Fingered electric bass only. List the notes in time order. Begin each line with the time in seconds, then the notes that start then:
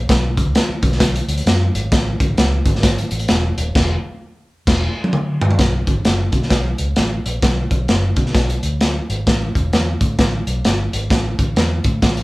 0.09 B1
0.46 C#2
0.69 muted fingered electric bass stroke
0.83 B1
1.28 D2
1.46 F#2
1.75 G#1
1.92 A1
2.29 A1
2.38 C#2
2.66 G#1
3.12 A1
3.30 E1
3.58 D#1
3.75 E1
4.67 E1
5.59 B1
5.88 G#1
6.05 F#1
6.33 B2
6.51 B1
6.79 C#2
6.98 A1
7.26 A#1
7.43 B1
7.71 B1
7.89 F#1
8.17 B2
8.35 B1
8.63 D2
9.10 G#1
9.27 A1
9.55 E1
9.73 E2
10.01 A2
10.19 A1
10.47 B1
10.65 G1
10.94 G#1
11.11 A1
11.39 A1
11.57 E2
11.85 A2
12.03 A1